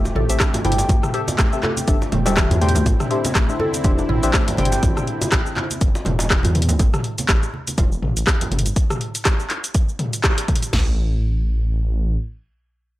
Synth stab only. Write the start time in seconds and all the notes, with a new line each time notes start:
0.30 C4 G4 A4 E5
0.65 C4 G4 A4 G5
1.14 C4 G4 A4 E5
1.53 C4 G4 A4 E5
1.88 C4 G4 A4 E5
2.26 C4 G4 A4 E5
2.61 D4 G4 C5 G5
3.11 D4 G4 C5 E5
3.49 D4 G4 C5 E5
3.84 D4 G4 C5 E5
4.23 D4 G4 C5 E5
4.58 D4 G4 C5 G5